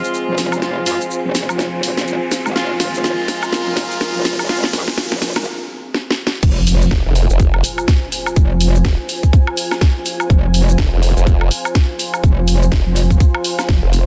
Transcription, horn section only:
0.00 0.60 G#3 medium
0.00 0.60 C4 medium
0.00 0.60 F4 medium
0.62 0.84 G#3 medium
0.62 0.84 C4 medium
0.62 0.84 F4 medium
0.87 1.03 G#3 medium
0.87 1.03 C4 medium
0.87 1.03 F4 loud
2.56 2.72 G#3 loud
2.56 2.72 C4 medium
2.56 2.72 F4 loud
2.80 4.47 G#3 medium
2.80 4.47 C4 medium
2.80 4.47 F4 medium
4.49 4.71 G#3 medium
4.49 4.71 C4 medium
4.49 4.71 F4 medium

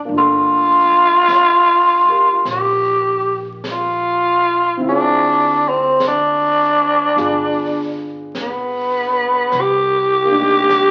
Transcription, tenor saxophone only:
0.18 2.45 F4 loud
2.51 3.44 G4 medium
3.72 4.81 F4 medium
4.89 5.70 D4 loud
5.69 6.03 C4 medium
6.08 8.16 D4 medium
8.42 9.62 B3 medium
9.61 10.91 G4 loud

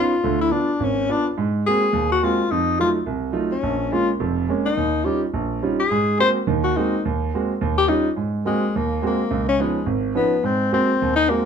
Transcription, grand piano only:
0.00 0.12 B3 medium
0.00 0.12 C#4 medium
0.00 0.12 D#4 soft
0.00 0.12 F4 medium
0.24 0.47 D2 medium
0.24 0.47 D3 medium
0.50 0.69 B3 soft
0.50 0.69 D4 soft
0.50 0.69 F4 medium
0.80 1.04 G#1 medium
1.09 1.26 B3 medium
1.09 1.26 D4 soft
1.09 1.26 F4 medium
1.38 1.61 G#2 medium
1.67 1.84 G#3 medium
1.67 1.84 A#3 soft
1.67 1.84 C4 soft
1.67 1.84 F#4 medium
1.93 2.17 D#2 medium
2.23 2.40 G#3 medium
2.23 2.40 A#3 soft
2.23 2.40 C4 soft
2.23 2.40 F#4 medium
2.51 2.74 F2 medium
2.79 2.96 F#3 medium
2.79 2.97 A3 soft
2.79 2.97 D#4 soft
2.79 2.97 F4 medium
3.06 3.30 C2 medium
3.32 3.51 F#3 soft
3.32 3.52 A3 soft
3.32 3.52 D#4 soft
3.32 3.52 F4 medium
3.63 3.87 A#1 medium
3.92 4.10 G#3 medium
3.92 4.10 A#3 soft
3.92 4.10 C#4 medium
4.20 4.44 F1 medium
4.20 4.44 F2 medium
4.49 4.66 G#3 medium
4.49 4.67 A#3 soft
4.49 4.67 C#4 medium
4.77 5.01 D#2 medium
5.06 5.23 G3 soft
5.06 5.23 C#4 soft
5.06 5.23 D#4 soft
5.06 5.24 F4 soft
5.34 5.58 A#1 medium
5.63 5.80 G3 medium
5.63 5.80 C#4 soft
5.63 5.80 D#4 soft
5.63 5.81 F4 medium
5.91 6.14 G#2 medium
6.19 6.36 G#3 soft
6.19 6.37 A#3 medium
6.19 6.37 C4 soft
6.19 6.37 F#4 medium
6.47 6.71 D#2 medium
6.47 6.71 D#3 medium
6.77 6.94 G#3 medium
6.77 6.94 A#3 medium
6.77 6.94 C4 soft
6.77 6.94 F#4 medium
7.05 7.29 D#2 medium
7.34 7.51 G#3 soft
7.34 7.51 A#3 soft
7.34 7.51 C4 soft
7.34 7.51 F#4 medium
7.61 7.85 D#2 medium
7.88 8.06 G3 soft
7.88 8.06 C#4 soft
7.88 8.06 D#4 soft
7.88 8.07 F4 medium
8.17 8.41 G#2 medium
8.45 8.64 G#3 soft
8.45 8.63 A#3 soft
8.45 8.64 C4 soft
8.45 8.64 F#4 medium
8.76 8.99 D#2 medium
9.02 9.20 G#3 medium
9.02 9.20 A#3 soft
9.02 9.21 C4 soft
9.02 9.21 F#4 medium
9.31 9.55 C#2 medium
9.59 9.77 F3 medium
9.59 9.77 B3 soft
9.59 9.78 C#4 soft
9.59 9.78 D#4 medium
9.86 10.11 G#1 medium
10.15 10.33 F3 medium
10.15 10.33 B3 soft
10.15 10.33 C#4 soft
10.15 10.34 D#4 medium
10.43 10.68 G#2 medium
10.72 10.90 G#3 medium
10.72 10.90 A#3 soft
10.72 10.90 C4 soft
10.72 10.91 F#4 medium
11.02 11.26 D#2 medium
11.29 11.45 G#3 soft
11.29 11.45 A#3 soft
11.29 11.45 C4 soft
11.29 11.45 F#4 medium

